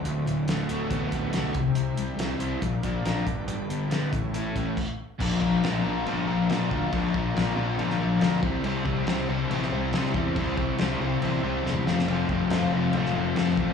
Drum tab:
CC |----------------|----------------|------------x---|x---x---x---x---|
HH |x-x-x-x-x-x-x-x-|x-x-x-x-x-x-x-x-|x-x-x-x-x-x-----|----------------|
SD |----o-------o---|----o-------o---|----o-----------|----o-------o---|
T2 |----------------|----------------|----------------|----------------|
BD |--------o-o---o-|--------o-o---o-|------o---o-o---|o-o-----------o-|

CC |x---x---x---x---|x---x---x---x---|x---x---x-------|x---x---x---x---|
HH |----------------|----------------|----------------|----------------|
SD |----o----o--o---|----o----o--oo--|----o-------o-oo|----o----o--oo--|
T2 |----------------|----------------|-------------o--|----------------|
BD |o-o-----------o-|--o-----------o-|o-o-------------|--o-----------o-|